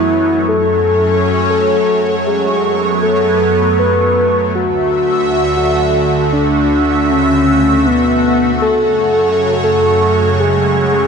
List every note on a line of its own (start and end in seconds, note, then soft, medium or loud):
0.00 0.44 F#2 medium
0.00 0.44 F#3 medium
0.00 0.44 A3 medium
0.00 0.46 B3 medium
0.00 0.38 E4 loud
0.00 0.44 C#5 medium
0.48 4.51 F#2 medium
0.48 4.51 F#3 medium
0.48 11.07 A3 medium
0.48 2.50 C#4 medium
0.48 1.40 A4 loud
0.48 4.51 C#5 medium
1.50 2.16 A4 loud
2.26 2.92 G#4 loud
2.52 4.53 B3 medium
3.03 3.69 A4 loud
3.79 4.45 B4 loud
4.55 8.58 D2 medium
4.55 8.58 D3 medium
4.55 5.47 F#4 loud
4.55 11.07 F#4 medium
4.55 6.56 E5 medium
5.57 6.23 F#4 loud
6.33 7.11 D4 loud
6.58 8.60 E5 medium
7.09 7.87 C#4 loud
7.85 8.52 B3 loud
8.61 11.07 F#2 medium
8.61 11.07 C#3 medium
8.61 9.53 A4 loud
8.61 11.07 C#5 medium
9.64 10.30 A4 loud
10.40 11.07 G#4 loud